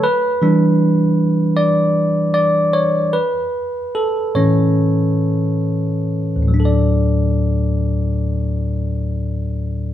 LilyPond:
<<
  \new Staff \with { instrumentName = "Tine electric piano" } { \time 4/4 \key d \major \tempo 4 = 71 b'2 d''4 d''8 cis''8 | b'4 a'8 cis''2 r8 | r1 | }
  \new Staff \with { instrumentName = "Tine electric piano" } { \clef bass \time 4/4 \key d \major r8 <e g d'>8 r2. | r4. <a, e cis'>2~ <a, e cis'>8 | <d, a, fis d' a' d''>1 | }
>>